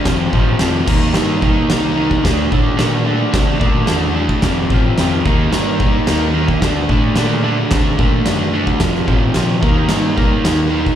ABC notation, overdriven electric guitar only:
X:1
M:4/4
L:1/8
Q:1/4=110
K:Dphr
V:1 name="Overdriven electric guitar"
[F,,C,F,] [F,,C,F,] [F,,C,F,] [E,B,E] [E,B,E] [E,B,E] [E,B,E] [E,B,E] | [D,A,D] [D,A,D] [D,A,D] [D,A,D] [D,A,D] [D,A,D] [D,A,D] [D,A,D] | [F,,C,F,] [F,,C,F,] [F,,C,F,] [E,B,E] [E,B,E] [E,B,E] [E,B,E] [E,B,E] | [D,A,D] [D,A,D] [D,A,D] [D,A,D] [D,A,D] [D,A,D] [D,A,D] [D,A,D] |
[F,,C,F,] [F,,C,F,] [F,,C,F,] [E,B,E] [E,B,E] [E,B,E] [E,B,E] [E,B,E] |]